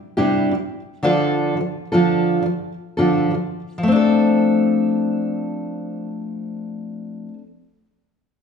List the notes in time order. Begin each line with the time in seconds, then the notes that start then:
0.17 C3 G3 D4 E4 G4
0.51 C3 G3
1.03 D3 F3 D4 F4 A4
1.57 D3 F3
1.92 D3 F3 D4 F4 A4
2.43 D3 F3
2.97 D3 F3 D4 F4 A4
3.31 D3 F3
3.78 F3
3.83 A3
3.88 C4
3.92 D4 A4